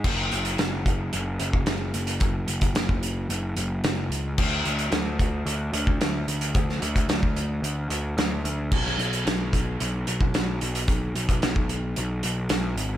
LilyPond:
<<
  \new Staff \with { instrumentName = "Picked electric bass" } { \clef bass \time 4/4 \key fis \mixolydian \tempo 4 = 111 fis,,8 fis,,8 fis,,4 fis,,8 fis,,8 fis,,8 fis,,8 | fis,,8 fis,,8 fis,,4 fis,,8 fis,,8 fis,,8 cis,8 | d,8 d,8 d,4 d,8 d,8 d,8 d,8 | d,8 d,8 d,4 d,8 d,8 d,8 d,8 |
b,,8 b,,8 b,,4 b,,8 b,,8 b,,8 b,,8 | b,,8 b,,8 b,,4 b,,8 b,,8 b,,8 gis,,8 | }
  \new DrumStaff \with { instrumentName = "Drums" } \drummode { \time 4/4 <cymc bd>8 hh16 hh16 <hh sn>8 <hh bd>8 hh8 hh16 bd16 <hh sn>8 hh16 hh16 | <hh bd>8 hh16 <hh bd>16 <hh sn>16 bd16 hh8 hh8 hh8 <hh sn>8 hh8 | <cymc bd>8 hh16 hh16 <hh sn>8 <hh bd>8 hh8 hh16 bd16 <hh sn>8 hh16 hh16 | <hh bd>16 sn16 hh16 <hh bd>16 <hh sn>16 bd16 hh8 hh8 hh8 <hh sn>8 hh8 |
<cymc bd>16 sn16 hh16 hh16 <hh sn>8 <hh bd>8 hh8 hh16 bd16 <hh sn>8 hh16 hh16 | <hh bd>8 hh16 <hh bd>16 <hh sn>16 bd16 hh8 hh8 hh8 <hh sn>8 hh8 | }
>>